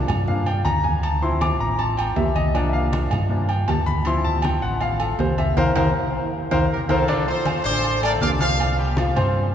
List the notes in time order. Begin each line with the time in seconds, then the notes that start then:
0.08 G2, high conga, low conga, low agogo
0.28 F3 A#3 D4 F5, high conga, low conga
0.46 G5, high conga, low agogo
0.64 D2 A#5, high conga, low agogo
0.84 G#5, high conga
1.03 A5, high conga, low agogo
1.22 F3 C4 E4 C6, high conga
1.41 D6, high conga, low agogo
1.59 A1 A#5, high conga
1.79 A5, high conga, low agogo
1.97 G5, high conga, low agogo
2.16 C2 E5, high conga, low timbale
2.35 D#5, high conga, low agogo
2.54 F3 A#3 D4 D5, high conga, low agogo
2.69 E5
2.73 F5, high conga
2.93 high conga, low agogo
3.11 G2, high conga, low conga, low agogo
3.29 F3 A#3 D4, high conga
3.49 G5, high conga, low agogo
3.68 D2 A5, high conga, low timbale, low agogo
3.86 B5, high conga
4.05 F3 C4 E4 C6, high conga, low agogo
4.25 A5, high conga
4.42 G5, high conga, low agogo
4.62 A1 F#5, high conga
4.81 F5, high conga, low agogo
5.00 A4, high conga, low agogo
5.19 C2 C5, high conga, low timbale
5.38 E5, high conga, low agogo
5.56 C2 A#4 C5 F5, high conga, high timbale
5.76 C2 A#4 C5 F5, high conga, high timbale
6.51 C2 A#4 C5 F5, high conga, high timbale
6.72 G4 A#4
6.89 C2 F4 A4 A#4 C5 F5, high conga, high timbale
7.08 D3 D4 D5, high conga, low agogo
7.27 F3 F4 A4 C5 F5, high conga
7.45 high conga, low agogo
7.64 A1 D4 A4 C5 D5 D6, high conga
7.84 high conga, low agogo
8.03 A3 A4 A#4 D5 A5, high conga, low agogo
8.21 C2 D4 D5 F5 D6, high conga, low timbale
8.39 F3 F4 C5 F5, high conga, low agogo
8.59 high conga, low agogo
8.77 G3 G4 G5, high conga
8.97 F3 F4 F5, high conga, low agogo
9.15 G2 C4 C5 C6, high conga, low conga, low agogo
9.35 high conga